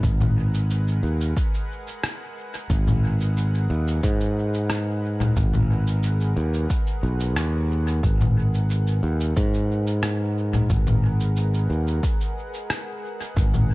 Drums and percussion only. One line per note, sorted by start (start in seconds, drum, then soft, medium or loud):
0.03 kick loud
0.03 cabasa soft
0.21 low conga medium
0.21 cabasa soft
0.54 cabasa soft
0.70 cabasa soft
0.88 cabasa soft
1.21 cabasa soft
1.37 kick loud
1.37 cabasa soft
1.54 cabasa soft
1.87 cabasa soft
2.04 cross-stick medium
2.04 cabasa soft
2.54 cabasa soft
2.70 kick medium
2.70 cabasa soft
2.87 low conga medium
2.87 cabasa soft
3.21 cabasa soft
3.37 cabasa soft
3.54 cabasa soft
3.88 cabasa soft
4.03 kick medium
4.03 cabasa soft
4.20 cabasa soft
4.54 cabasa soft
4.70 cross-stick medium
4.70 cabasa soft
5.20 low conga medium
5.20 cabasa soft
5.36 kick loud
5.36 cabasa soft
5.54 low conga medium
5.54 cabasa soft
5.87 cabasa soft
6.03 cabasa soft
6.20 cabasa soft
6.54 cabasa soft
6.70 kick loud
6.70 cabasa soft
6.87 cabasa soft
7.20 cabasa soft
7.36 cross-stick medium
7.36 cabasa soft
7.87 cabasa soft
8.03 kick loud
8.03 cabasa soft
8.21 low conga medium
8.21 cabasa soft
8.54 cabasa soft
8.70 cabasa medium
8.87 cabasa soft
9.20 cabasa soft
9.37 kick loud
9.37 cabasa soft
9.54 cabasa soft
9.87 cabasa soft
10.03 cross-stick medium
10.03 cabasa medium
10.53 low conga medium
10.53 cabasa soft
10.70 kick loud
10.70 cabasa medium
10.87 low conga medium
10.87 cabasa soft
11.20 cabasa soft
11.36 cabasa soft
11.54 cabasa soft
11.87 cabasa soft
12.03 kick loud
12.03 cabasa medium
12.21 cabasa soft
12.54 cabasa soft
12.70 cross-stick medium
12.70 cabasa medium
13.21 cabasa soft
13.37 kick loud
13.37 cabasa medium
13.54 low conga medium
13.54 cabasa soft